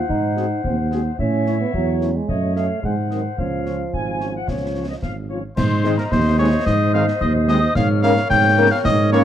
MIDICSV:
0, 0, Header, 1, 9, 480
1, 0, Start_track
1, 0, Key_signature, -5, "major"
1, 0, Tempo, 546946
1, 82, Time_signature, 2, 2, 24, 8
1, 4889, Key_signature, -4, "major"
1, 8109, End_track
2, 0, Start_track
2, 0, Title_t, "Piccolo"
2, 0, Program_c, 0, 72
2, 4886, Note_on_c, 0, 84, 83
2, 5246, Note_on_c, 0, 82, 72
2, 5260, Note_off_c, 0, 84, 0
2, 5367, Note_on_c, 0, 84, 81
2, 5380, Note_off_c, 0, 82, 0
2, 5599, Note_off_c, 0, 84, 0
2, 5605, Note_on_c, 0, 85, 80
2, 5659, Note_off_c, 0, 85, 0
2, 5843, Note_on_c, 0, 87, 79
2, 5898, Note_off_c, 0, 87, 0
2, 6087, Note_on_c, 0, 89, 79
2, 6141, Note_off_c, 0, 89, 0
2, 6324, Note_on_c, 0, 87, 83
2, 6378, Note_off_c, 0, 87, 0
2, 6569, Note_on_c, 0, 87, 92
2, 6805, Note_on_c, 0, 89, 83
2, 6818, Note_off_c, 0, 87, 0
2, 7045, Note_off_c, 0, 89, 0
2, 7052, Note_on_c, 0, 89, 83
2, 7105, Note_off_c, 0, 89, 0
2, 7290, Note_on_c, 0, 91, 96
2, 7649, Note_on_c, 0, 89, 96
2, 7662, Note_off_c, 0, 91, 0
2, 7763, Note_off_c, 0, 89, 0
2, 7768, Note_on_c, 0, 87, 90
2, 7821, Note_off_c, 0, 87, 0
2, 8012, Note_on_c, 0, 85, 87
2, 8109, Note_off_c, 0, 85, 0
2, 8109, End_track
3, 0, Start_track
3, 0, Title_t, "Woodwind section"
3, 0, Program_c, 1, 71
3, 0, Note_on_c, 1, 72, 61
3, 0, Note_on_c, 1, 78, 59
3, 1009, Note_off_c, 1, 72, 0
3, 1009, Note_off_c, 1, 78, 0
3, 1041, Note_on_c, 1, 76, 57
3, 1042, Note_on_c, 1, 73, 58
3, 1859, Note_off_c, 1, 73, 0
3, 1859, Note_off_c, 1, 76, 0
3, 2008, Note_on_c, 1, 73, 47
3, 2013, Note_on_c, 1, 75, 45
3, 2234, Note_off_c, 1, 75, 0
3, 2256, Note_on_c, 1, 77, 44
3, 2454, Note_off_c, 1, 73, 0
3, 2492, Note_off_c, 1, 77, 0
3, 2498, Note_on_c, 1, 78, 44
3, 2499, Note_on_c, 1, 72, 46
3, 2940, Note_off_c, 1, 78, 0
3, 2970, Note_on_c, 1, 73, 45
3, 2970, Note_on_c, 1, 77, 42
3, 2974, Note_off_c, 1, 72, 0
3, 3401, Note_off_c, 1, 73, 0
3, 3401, Note_off_c, 1, 77, 0
3, 3454, Note_on_c, 1, 80, 53
3, 3786, Note_off_c, 1, 80, 0
3, 3823, Note_on_c, 1, 78, 46
3, 3936, Note_off_c, 1, 78, 0
3, 3936, Note_on_c, 1, 73, 47
3, 4293, Note_off_c, 1, 73, 0
3, 4296, Note_on_c, 1, 75, 41
3, 4348, Note_off_c, 1, 75, 0
3, 4415, Note_on_c, 1, 77, 46
3, 4522, Note_off_c, 1, 77, 0
3, 4653, Note_on_c, 1, 73, 36
3, 4760, Note_off_c, 1, 73, 0
3, 4895, Note_on_c, 1, 75, 79
3, 4896, Note_on_c, 1, 72, 79
3, 6775, Note_off_c, 1, 72, 0
3, 6775, Note_off_c, 1, 75, 0
3, 6811, Note_on_c, 1, 73, 86
3, 6812, Note_on_c, 1, 70, 83
3, 8109, Note_off_c, 1, 70, 0
3, 8109, Note_off_c, 1, 73, 0
3, 8109, End_track
4, 0, Start_track
4, 0, Title_t, "Cornet"
4, 0, Program_c, 2, 56
4, 321, Note_on_c, 2, 68, 49
4, 408, Note_off_c, 2, 68, 0
4, 803, Note_on_c, 2, 68, 47
4, 890, Note_off_c, 2, 68, 0
4, 1291, Note_on_c, 2, 73, 47
4, 1376, Note_off_c, 2, 73, 0
4, 1760, Note_on_c, 2, 73, 43
4, 1848, Note_off_c, 2, 73, 0
4, 2237, Note_on_c, 2, 75, 39
4, 2325, Note_off_c, 2, 75, 0
4, 2728, Note_on_c, 2, 75, 40
4, 2814, Note_off_c, 2, 75, 0
4, 3208, Note_on_c, 2, 73, 38
4, 3294, Note_off_c, 2, 73, 0
4, 3687, Note_on_c, 2, 73, 34
4, 3774, Note_off_c, 2, 73, 0
4, 4170, Note_on_c, 2, 73, 36
4, 4257, Note_off_c, 2, 73, 0
4, 4647, Note_on_c, 2, 73, 31
4, 4734, Note_off_c, 2, 73, 0
4, 4888, Note_on_c, 2, 72, 98
4, 5223, Note_off_c, 2, 72, 0
4, 5254, Note_on_c, 2, 70, 85
4, 5307, Note_off_c, 2, 70, 0
4, 5372, Note_on_c, 2, 72, 99
4, 5594, Note_off_c, 2, 72, 0
4, 5606, Note_on_c, 2, 73, 95
4, 5830, Note_off_c, 2, 73, 0
4, 5847, Note_on_c, 2, 75, 104
4, 6071, Note_off_c, 2, 75, 0
4, 6092, Note_on_c, 2, 77, 98
4, 6199, Note_off_c, 2, 77, 0
4, 6326, Note_on_c, 2, 75, 97
4, 6434, Note_off_c, 2, 75, 0
4, 6568, Note_on_c, 2, 75, 102
4, 6790, Note_off_c, 2, 75, 0
4, 6808, Note_on_c, 2, 77, 101
4, 6915, Note_off_c, 2, 77, 0
4, 7043, Note_on_c, 2, 77, 109
4, 7267, Note_off_c, 2, 77, 0
4, 7280, Note_on_c, 2, 79, 113
4, 7617, Note_off_c, 2, 79, 0
4, 7646, Note_on_c, 2, 77, 97
4, 7700, Note_off_c, 2, 77, 0
4, 7767, Note_on_c, 2, 75, 119
4, 7988, Note_off_c, 2, 75, 0
4, 8008, Note_on_c, 2, 73, 112
4, 8109, Note_off_c, 2, 73, 0
4, 8109, End_track
5, 0, Start_track
5, 0, Title_t, "French horn section"
5, 0, Program_c, 3, 60
5, 319, Note_on_c, 3, 60, 47
5, 319, Note_on_c, 3, 66, 48
5, 320, Note_on_c, 3, 56, 51
5, 406, Note_off_c, 3, 60, 0
5, 407, Note_off_c, 3, 56, 0
5, 407, Note_off_c, 3, 66, 0
5, 803, Note_on_c, 3, 60, 47
5, 803, Note_on_c, 3, 66, 44
5, 804, Note_on_c, 3, 56, 48
5, 890, Note_off_c, 3, 60, 0
5, 890, Note_off_c, 3, 66, 0
5, 891, Note_off_c, 3, 56, 0
5, 1285, Note_on_c, 3, 57, 45
5, 1288, Note_on_c, 3, 61, 44
5, 1288, Note_on_c, 3, 64, 44
5, 1371, Note_off_c, 3, 57, 0
5, 1373, Note_off_c, 3, 61, 0
5, 1373, Note_off_c, 3, 64, 0
5, 1764, Note_on_c, 3, 61, 43
5, 1764, Note_on_c, 3, 64, 44
5, 1765, Note_on_c, 3, 57, 44
5, 1851, Note_off_c, 3, 57, 0
5, 1851, Note_off_c, 3, 61, 0
5, 1851, Note_off_c, 3, 64, 0
5, 2248, Note_on_c, 3, 63, 42
5, 2249, Note_on_c, 3, 57, 42
5, 2249, Note_on_c, 3, 61, 40
5, 2335, Note_off_c, 3, 57, 0
5, 2335, Note_off_c, 3, 61, 0
5, 2335, Note_off_c, 3, 63, 0
5, 2729, Note_on_c, 3, 54, 38
5, 2729, Note_on_c, 3, 60, 40
5, 2730, Note_on_c, 3, 63, 38
5, 2815, Note_off_c, 3, 54, 0
5, 2816, Note_off_c, 3, 60, 0
5, 2816, Note_off_c, 3, 63, 0
5, 3209, Note_on_c, 3, 53, 38
5, 3209, Note_on_c, 3, 61, 36
5, 3209, Note_on_c, 3, 65, 38
5, 3295, Note_off_c, 3, 53, 0
5, 3295, Note_off_c, 3, 61, 0
5, 3295, Note_off_c, 3, 65, 0
5, 3687, Note_on_c, 3, 61, 36
5, 3687, Note_on_c, 3, 65, 38
5, 3688, Note_on_c, 3, 53, 35
5, 3774, Note_off_c, 3, 53, 0
5, 3774, Note_off_c, 3, 61, 0
5, 3774, Note_off_c, 3, 65, 0
5, 4170, Note_on_c, 3, 53, 35
5, 4171, Note_on_c, 3, 61, 35
5, 4171, Note_on_c, 3, 65, 34
5, 4256, Note_off_c, 3, 53, 0
5, 4257, Note_off_c, 3, 61, 0
5, 4257, Note_off_c, 3, 65, 0
5, 4649, Note_on_c, 3, 65, 33
5, 4650, Note_on_c, 3, 53, 35
5, 4650, Note_on_c, 3, 61, 34
5, 4736, Note_off_c, 3, 61, 0
5, 4736, Note_off_c, 3, 65, 0
5, 4737, Note_off_c, 3, 53, 0
5, 5129, Note_on_c, 3, 56, 65
5, 5131, Note_on_c, 3, 60, 61
5, 5131, Note_on_c, 3, 63, 60
5, 5215, Note_off_c, 3, 56, 0
5, 5217, Note_off_c, 3, 60, 0
5, 5217, Note_off_c, 3, 63, 0
5, 5608, Note_on_c, 3, 60, 63
5, 5608, Note_on_c, 3, 63, 61
5, 5609, Note_on_c, 3, 56, 63
5, 5694, Note_off_c, 3, 60, 0
5, 5694, Note_off_c, 3, 63, 0
5, 5695, Note_off_c, 3, 56, 0
5, 6089, Note_on_c, 3, 56, 65
5, 6091, Note_on_c, 3, 60, 68
5, 6091, Note_on_c, 3, 63, 62
5, 6175, Note_off_c, 3, 56, 0
5, 6176, Note_off_c, 3, 63, 0
5, 6177, Note_off_c, 3, 60, 0
5, 6571, Note_on_c, 3, 56, 68
5, 6571, Note_on_c, 3, 63, 64
5, 6573, Note_on_c, 3, 60, 67
5, 6656, Note_off_c, 3, 63, 0
5, 6657, Note_off_c, 3, 56, 0
5, 6658, Note_off_c, 3, 60, 0
5, 7051, Note_on_c, 3, 58, 70
5, 7052, Note_on_c, 3, 61, 67
5, 7052, Note_on_c, 3, 70, 63
5, 7136, Note_off_c, 3, 58, 0
5, 7137, Note_off_c, 3, 61, 0
5, 7137, Note_off_c, 3, 70, 0
5, 7527, Note_on_c, 3, 58, 73
5, 7527, Note_on_c, 3, 61, 70
5, 7528, Note_on_c, 3, 70, 69
5, 7613, Note_off_c, 3, 58, 0
5, 7613, Note_off_c, 3, 61, 0
5, 7613, Note_off_c, 3, 70, 0
5, 8008, Note_on_c, 3, 61, 75
5, 8008, Note_on_c, 3, 70, 73
5, 8009, Note_on_c, 3, 58, 73
5, 8093, Note_off_c, 3, 70, 0
5, 8094, Note_off_c, 3, 58, 0
5, 8094, Note_off_c, 3, 61, 0
5, 8109, End_track
6, 0, Start_track
6, 0, Title_t, "Euphonium"
6, 0, Program_c, 4, 58
6, 77, Note_on_c, 4, 63, 82
6, 526, Note_off_c, 4, 63, 0
6, 562, Note_on_c, 4, 60, 61
6, 670, Note_off_c, 4, 60, 0
6, 1049, Note_on_c, 4, 61, 82
6, 1382, Note_off_c, 4, 61, 0
6, 1412, Note_on_c, 4, 59, 61
6, 1520, Note_off_c, 4, 59, 0
6, 1527, Note_on_c, 4, 54, 78
6, 1892, Note_on_c, 4, 56, 60
6, 1905, Note_off_c, 4, 54, 0
6, 2005, Note_on_c, 4, 57, 70
6, 2019, Note_off_c, 4, 56, 0
6, 2241, Note_off_c, 4, 57, 0
6, 2246, Note_on_c, 4, 57, 61
6, 2470, Note_off_c, 4, 57, 0
6, 2481, Note_on_c, 4, 56, 61
6, 2590, Note_off_c, 4, 56, 0
6, 2731, Note_on_c, 4, 51, 54
6, 2839, Note_off_c, 4, 51, 0
6, 2966, Note_on_c, 4, 53, 62
6, 4613, Note_off_c, 4, 53, 0
6, 8109, End_track
7, 0, Start_track
7, 0, Title_t, "Trombone section"
7, 0, Program_c, 5, 61
7, 5122, Note_on_c, 5, 51, 68
7, 5123, Note_on_c, 5, 56, 69
7, 5208, Note_off_c, 5, 51, 0
7, 5209, Note_off_c, 5, 56, 0
7, 5593, Note_on_c, 5, 51, 67
7, 5599, Note_on_c, 5, 56, 66
7, 5682, Note_off_c, 5, 51, 0
7, 5686, Note_off_c, 5, 56, 0
7, 6087, Note_on_c, 5, 51, 76
7, 6087, Note_on_c, 5, 56, 71
7, 6171, Note_off_c, 5, 51, 0
7, 6171, Note_off_c, 5, 56, 0
7, 6565, Note_on_c, 5, 51, 67
7, 6565, Note_on_c, 5, 56, 68
7, 6649, Note_off_c, 5, 51, 0
7, 6649, Note_off_c, 5, 56, 0
7, 7047, Note_on_c, 5, 49, 80
7, 7047, Note_on_c, 5, 58, 75
7, 7130, Note_off_c, 5, 49, 0
7, 7130, Note_off_c, 5, 58, 0
7, 7526, Note_on_c, 5, 49, 75
7, 7528, Note_on_c, 5, 58, 73
7, 7609, Note_off_c, 5, 49, 0
7, 7611, Note_off_c, 5, 58, 0
7, 7996, Note_on_c, 5, 49, 88
7, 8001, Note_on_c, 5, 58, 83
7, 8082, Note_off_c, 5, 49, 0
7, 8086, Note_off_c, 5, 58, 0
7, 8109, End_track
8, 0, Start_track
8, 0, Title_t, "Tuba"
8, 0, Program_c, 6, 58
8, 82, Note_on_c, 6, 44, 63
8, 483, Note_off_c, 6, 44, 0
8, 563, Note_on_c, 6, 39, 62
8, 964, Note_off_c, 6, 39, 0
8, 1045, Note_on_c, 6, 45, 62
8, 1445, Note_off_c, 6, 45, 0
8, 1523, Note_on_c, 6, 40, 57
8, 1924, Note_off_c, 6, 40, 0
8, 2004, Note_on_c, 6, 42, 52
8, 2366, Note_off_c, 6, 42, 0
8, 2487, Note_on_c, 6, 44, 52
8, 2887, Note_off_c, 6, 44, 0
8, 2967, Note_on_c, 6, 37, 47
8, 3368, Note_off_c, 6, 37, 0
8, 3450, Note_on_c, 6, 32, 48
8, 3850, Note_off_c, 6, 32, 0
8, 3929, Note_on_c, 6, 37, 45
8, 4329, Note_off_c, 6, 37, 0
8, 4409, Note_on_c, 6, 32, 42
8, 4809, Note_off_c, 6, 32, 0
8, 4889, Note_on_c, 6, 44, 81
8, 5289, Note_off_c, 6, 44, 0
8, 5365, Note_on_c, 6, 39, 79
8, 5766, Note_off_c, 6, 39, 0
8, 5850, Note_on_c, 6, 44, 83
8, 6249, Note_off_c, 6, 44, 0
8, 6327, Note_on_c, 6, 39, 76
8, 6726, Note_off_c, 6, 39, 0
8, 6801, Note_on_c, 6, 44, 87
8, 7203, Note_off_c, 6, 44, 0
8, 7283, Note_on_c, 6, 44, 88
8, 7640, Note_off_c, 6, 44, 0
8, 7761, Note_on_c, 6, 44, 93
8, 8109, Note_off_c, 6, 44, 0
8, 8109, End_track
9, 0, Start_track
9, 0, Title_t, "Drums"
9, 82, Note_on_c, 9, 35, 64
9, 170, Note_off_c, 9, 35, 0
9, 322, Note_on_c, 9, 38, 28
9, 410, Note_off_c, 9, 38, 0
9, 564, Note_on_c, 9, 35, 64
9, 652, Note_off_c, 9, 35, 0
9, 805, Note_on_c, 9, 38, 34
9, 892, Note_off_c, 9, 38, 0
9, 1043, Note_on_c, 9, 35, 68
9, 1130, Note_off_c, 9, 35, 0
9, 1283, Note_on_c, 9, 38, 28
9, 1371, Note_off_c, 9, 38, 0
9, 1525, Note_on_c, 9, 35, 58
9, 1612, Note_off_c, 9, 35, 0
9, 1765, Note_on_c, 9, 38, 29
9, 1852, Note_off_c, 9, 38, 0
9, 2006, Note_on_c, 9, 35, 64
9, 2093, Note_off_c, 9, 35, 0
9, 2247, Note_on_c, 9, 38, 29
9, 2335, Note_off_c, 9, 38, 0
9, 2487, Note_on_c, 9, 35, 55
9, 2574, Note_off_c, 9, 35, 0
9, 2727, Note_on_c, 9, 38, 31
9, 2815, Note_off_c, 9, 38, 0
9, 2968, Note_on_c, 9, 35, 64
9, 3056, Note_off_c, 9, 35, 0
9, 3209, Note_on_c, 9, 38, 27
9, 3297, Note_off_c, 9, 38, 0
9, 3452, Note_on_c, 9, 35, 58
9, 3540, Note_off_c, 9, 35, 0
9, 3690, Note_on_c, 9, 38, 31
9, 3778, Note_off_c, 9, 38, 0
9, 3930, Note_on_c, 9, 35, 62
9, 3930, Note_on_c, 9, 38, 47
9, 4017, Note_off_c, 9, 35, 0
9, 4017, Note_off_c, 9, 38, 0
9, 4410, Note_on_c, 9, 35, 55
9, 4410, Note_on_c, 9, 38, 42
9, 4497, Note_off_c, 9, 35, 0
9, 4497, Note_off_c, 9, 38, 0
9, 4890, Note_on_c, 9, 35, 88
9, 4890, Note_on_c, 9, 38, 78
9, 4890, Note_on_c, 9, 49, 56
9, 4978, Note_off_c, 9, 35, 0
9, 4978, Note_off_c, 9, 38, 0
9, 4978, Note_off_c, 9, 49, 0
9, 5128, Note_on_c, 9, 38, 51
9, 5216, Note_off_c, 9, 38, 0
9, 5248, Note_on_c, 9, 38, 52
9, 5335, Note_off_c, 9, 38, 0
9, 5368, Note_on_c, 9, 35, 79
9, 5368, Note_on_c, 9, 38, 64
9, 5456, Note_off_c, 9, 35, 0
9, 5456, Note_off_c, 9, 38, 0
9, 5849, Note_on_c, 9, 35, 84
9, 5849, Note_on_c, 9, 38, 73
9, 5936, Note_off_c, 9, 35, 0
9, 5936, Note_off_c, 9, 38, 0
9, 6210, Note_on_c, 9, 38, 54
9, 6298, Note_off_c, 9, 38, 0
9, 6328, Note_on_c, 9, 35, 82
9, 6416, Note_off_c, 9, 35, 0
9, 6565, Note_on_c, 9, 38, 58
9, 6653, Note_off_c, 9, 38, 0
9, 6805, Note_on_c, 9, 35, 87
9, 6805, Note_on_c, 9, 38, 78
9, 6892, Note_off_c, 9, 35, 0
9, 6892, Note_off_c, 9, 38, 0
9, 7046, Note_on_c, 9, 38, 53
9, 7134, Note_off_c, 9, 38, 0
9, 7168, Note_on_c, 9, 38, 57
9, 7256, Note_off_c, 9, 38, 0
9, 7289, Note_on_c, 9, 35, 81
9, 7289, Note_on_c, 9, 38, 68
9, 7376, Note_off_c, 9, 35, 0
9, 7376, Note_off_c, 9, 38, 0
9, 7767, Note_on_c, 9, 35, 86
9, 7767, Note_on_c, 9, 38, 80
9, 7855, Note_off_c, 9, 35, 0
9, 7855, Note_off_c, 9, 38, 0
9, 8109, End_track
0, 0, End_of_file